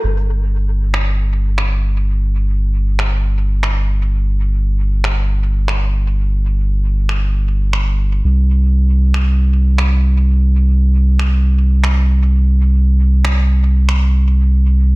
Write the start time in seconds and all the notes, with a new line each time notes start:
0.04 G1
0.94 finger snap
1.58 finger snap
2.99 finger snap
3.63 finger snap
5.04 finger snap
5.68 finger snap
7.09 finger snap
7.73 finger snap
8.25 C2
9.14 finger snap
9.78 finger snap
11.19 finger snap
11.84 finger snap
13.25 finger snap
13.89 finger snap